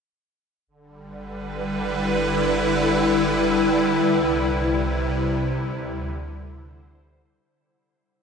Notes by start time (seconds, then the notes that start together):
0.67 G1 D3
0.80 G3
1.03 B4
1.44 E4
4.06 C2 C3
5.73 D2 D3
6.50 C5